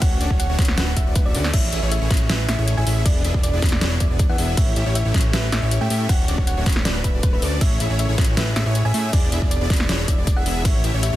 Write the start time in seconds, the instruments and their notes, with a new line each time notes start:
0.02 analog synth bass D1, supersaw synth A3 C#4 D4 F#4 C#5, digital synth lead C#5, synth pluck F#5, kick, closed hi-hat, crash
0.21 analog synth bass D1, supersaw synth A3 C#4 D4 F#4 D5, digital synth lead D5, closed hi-hat
0.30 analog synth bass D1, digital synth lead C#5, kick
0.39 synth pluck F#5, closed hi-hat
0.49 analog synth bass D1, supersaw synth A3 C#4 D4 F#4 C#5, digital synth lead C#5
0.58 analog synth bass D1, digital synth lead C#5, kick, snare, closed hi-hat
0.62 closed hi-hat
0.65 snare, closed hi-hat
0.77 analog synth bass D1, supersaw synth A3 C#4 D4 F#4 B4, digital synth lead B4, synth pluck F#5, snare, closed hi-hat
0.97 analog synth bass D1, supersaw synth A3 C#4 D4 F#4 E5, digital synth lead E5, synth pluck E5, kick, closed hi-hat
1.07 analog synth bass D1, supersaw synth A3 C#4 D4 F#4 D5, digital synth lead D5
1.16 analog synth bass D1, supersaw synth A3 C#4 D4 F#4 B4, digital synth lead B4, kick, closed hi-hat
1.25 analog synth bass D1, supersaw synth A3 C#4 D4 F#4 E5, synth pluck D5, digital synth lead E5
1.35 analog synth bass D2, supersaw synth A3 C#4 D4 F#4 D5, digital synth lead D5, open hi-hat
1.44 snare
1.54 analog synth bass A1, supersaw synth A3 C#4 C#5, digital synth lead C#5, synth pluck E5, kick, closed hi-hat, crash
1.73 analog synth bass A1, supersaw synth A3 C#4 E4 G#4 E5, digital synth lead E5, closed hi-hat
1.82 analog synth bass A1, supersaw synth A3 C#4 E4 G#4 C#5, digital synth lead C#5
1.92 synth pluck E5, closed hi-hat
2.01 analog synth bass A1, supersaw synth A3 C#4 E4 G#4 C#5, digital synth lead C#5
2.11 analog synth bass A1, supersaw synth A3 C#4 E4 G#4 C#5, digital synth lead C#5, kick, snare, closed hi-hat
2.14 closed hi-hat
2.17 closed hi-hat
2.29 analog synth bass A1, supersaw synth A3 C#4 E4 G#4 B4, digital synth lead B4, synth pluck E5, snare, closed hi-hat
2.49 analog synth bass A1, supersaw synth A3 C#4 E4 G#4 E5, synth pluck E5, digital synth lead E5, snare, closed hi-hat
2.58 analog synth bass A1, supersaw synth A3 C#4 E4 G#4 C#5, digital synth lead C#5
2.68 closed hi-hat
2.77 analog synth bass A1, supersaw synth A3 C#4 E4 G#4 E5, digital synth lead E5, synth pluck G#5
2.87 analog synth bass A1, supersaw synth A3 C#4 E4 G#4 E5, digital synth lead E5, open hi-hat
3.05 analog synth bass E1, supersaw synth B3 E4 G#4, synth pluck D5, digital synth lead D5, kick, closed hi-hat, crash
3.24 analog synth bass E1, supersaw synth B3 D4 E4 G#4 E5, digital synth lead E5, closed hi-hat
3.34 analog synth bass E1, supersaw synth B3 D4 E4 G#4 D5, digital synth lead D5, kick
3.43 synth pluck D5, closed hi-hat
3.53 analog synth bass E1, supersaw synth B3 D4 E4 G#4 D5, digital synth lead D5
3.62 analog synth bass E1, supersaw synth D4 E4, digital synth lead D5, kick, snare, closed hi-hat
3.66 closed hi-hat
3.69 snare, closed hi-hat
3.81 analog synth bass E1, supersaw synth B3 D4 E4 G#4 C#5, digital synth lead C#5, synth pluck D5, snare, closed hi-hat
4.00 analog synth bass E1, supersaw synth B3 D4 E4 G#4 E5, synth pluck D5, digital synth lead E5, kick, closed hi-hat
4.10 analog synth bass E1, supersaw synth B3 D4 E4 G#4 D5, digital synth lead D5
4.19 kick, closed hi-hat
4.29 analog synth bass E2, supersaw synth B3 D4 E4 G#4 E5, digital synth lead E5, synth pluck F#5
4.38 analog synth bass E1, supersaw synth B3 D4 E4 G#4 E5, digital synth lead E5, open hi-hat
4.57 analog synth bass A1, supersaw synth A3 C#4 E4 G4 C#5, digital synth lead C#5, synth pluck E5, kick, closed hi-hat, crash
4.76 analog synth bass A1, supersaw synth A3 C#4 E4 G4 E5, digital synth lead E5, closed hi-hat
4.86 analog synth bass A1, supersaw synth A3 C#4 E4 G4 C#5, digital synth lead C#5
4.95 synth pluck E5, closed hi-hat
5.05 analog synth bass A1, supersaw synth A3 C#4 E4 G4 C#5, digital synth lead C#5
5.14 analog synth bass A1, supersaw synth C#4 E4 G4 C#5, digital synth lead C#5, kick, snare, closed hi-hat
5.18 closed hi-hat
5.21 closed hi-hat
5.33 analog synth bass A1, supersaw synth A3 C#4 E4 G4 B4, digital synth lead B4, synth pluck E5, snare, closed hi-hat
5.52 analog synth bass A1, supersaw synth A3 C#4 E4 G4 E5, digital synth lead E5, synth pluck E5, snare, closed hi-hat
5.62 analog synth bass A1, supersaw synth A3 C#4 E4 G4 C#5, digital synth lead C#5
5.71 closed hi-hat
5.81 analog synth bass A2, supersaw synth A3 C#4 E4 G4 E5, digital synth lead E5, synth pluck G5
5.90 analog synth bass A2, supersaw synth A3 C#4 E4 G4 E5, digital synth lead E5, open hi-hat
6.09 analog synth bass D1, supersaw synth C#4 D4 F#4 C#5, digital synth lead C#5, synth pluck F#5, kick, closed hi-hat, crash
6.28 analog synth bass D1, supersaw synth A3 C#4 D4 F#4 D5, digital synth lead D5, closed hi-hat
6.38 analog synth bass D1, supersaw synth A3 C#4 D4 F#4 C#5, digital synth lead C#5, kick
6.47 synth pluck F#5, closed hi-hat
6.57 analog synth bass D1, supersaw synth A3 C#4 D4 F#4 C#5, digital synth lead C#5
6.66 analog synth bass D1, supersaw synth A3 C#4 D4 F#4 C#5, digital synth lead C#5, kick, snare, closed hi-hat
6.70 closed hi-hat
6.73 snare, closed hi-hat
6.85 analog synth bass D1, supersaw synth A3 C#4 D4 F#4 B4, digital synth lead B4, synth pluck D5, snare, closed hi-hat
7.04 analog synth bass D1, supersaw synth A3 C#4 D4 F#4 E5, synth pluck B4, digital synth lead E5, kick, closed hi-hat
7.14 analog synth bass D1, supersaw synth A3 C#4 D4 F#4 D5, digital synth lead D5
7.23 analog synth bass D1, supersaw synth A3 C#4 D4 F#4 B4, digital synth lead B4, kick, closed hi-hat
7.33 analog synth bass D1, supersaw synth A3 C#4 D4 F#4 E5, synth pluck B4, digital synth lead E5
7.42 analog synth bass D2, supersaw synth A3 C#4 D4 F#4 D5, digital synth lead D5, open hi-hat
7.61 analog synth bass A1, supersaw synth A3 C#4 E4 G#4 C#5, digital synth lead C#5, synth pluck E5, kick, closed hi-hat, crash
7.80 analog synth bass A1, supersaw synth A3 C#4 E4 G#4 E5, digital synth lead E5, closed hi-hat
7.90 analog synth bass A1, supersaw synth A3 C#4 E4 G#4 C#5, digital synth lead C#5
7.99 synth pluck E5, closed hi-hat
8.09 analog synth bass A1, supersaw synth A3 C#4 E4 G#4 C#5, digital synth lead C#5
8.18 analog synth bass A1, supersaw synth A3 C#4 E4 G#4 C#5, digital synth lead C#5, kick, snare, closed hi-hat
8.21 closed hi-hat
8.24 closed hi-hat
8.37 analog synth bass A1, supersaw synth A3 C#4 E4 G#4 B4, digital synth lead B4, synth pluck E5, snare, closed hi-hat
8.56 analog synth bass A1, supersaw synth A3 C#4 E4 G#4 E5, synth pluck E5, digital synth lead E5, snare, closed hi-hat
8.66 analog synth bass A1, supersaw synth A3 C#4 E4 G#4 C#5, digital synth lead C#5
8.75 closed hi-hat
8.85 analog synth bass A1, supersaw synth A3 C#4 E4 G#4 E5, digital synth lead E5, synth pluck G#5
8.94 analog synth bass A2, supersaw synth A3 C#4 E4 G#4 E5, digital synth lead E5, open hi-hat
9.13 analog synth bass E1, supersaw synth D4 E4 G#4 D5, synth pluck D5, digital synth lead D5, kick, closed hi-hat, crash
9.32 analog synth bass E1, supersaw synth B3 D4 E4 G#4 E5, digital synth lead E5, closed hi-hat
9.42 analog synth bass E1, supersaw synth B3 D4 E4 D5, digital synth lead D5, kick
9.51 synth pluck D5, closed hi-hat
9.61 analog synth bass E1, supersaw synth B3 D4 E4 G#4 D5, digital synth lead D5
9.70 analog synth bass E1, supersaw synth B3 D4 E4 G#4 D5, digital synth lead D5, kick, snare, closed hi-hat
9.73 closed hi-hat
9.76 snare, closed hi-hat
9.89 analog synth bass E1, supersaw synth B3 D4 E4 G#4 C#5, digital synth lead C#5, synth pluck D5, snare, closed hi-hat
10.08 analog synth bass E1, supersaw synth B3 D4 E4 G#4 E5, synth pluck D5, digital synth lead E5, kick, closed hi-hat
10.18 analog synth bass E1, supersaw synth B3 D4 E4 G#4 D5, digital synth lead D5
10.27 kick, closed hi-hat
10.36 analog synth bass E1, supersaw synth B3 D4 E4 G#4 E5, digital synth lead E5, synth pluck F#5
10.46 analog synth bass E1, supersaw synth B3 D4 E4 G#4 E5, digital synth lead E5, open hi-hat
10.65 analog synth bass A1, supersaw synth A3 C#4 E4 G4 C#5, digital synth lead C#5, synth pluck E5, kick, closed hi-hat, crash
10.84 analog synth bass A1, supersaw synth A3 C#4 E4 G4 E5, digital synth lead E5, closed hi-hat
10.94 analog synth bass A1, supersaw synth A3 C#4 E4 G4 C#5, digital synth lead C#5
11.03 synth pluck E5, closed hi-hat
11.13 analog synth bass A1, supersaw synth A3 C#4 E4 G4 C#5, digital synth lead C#5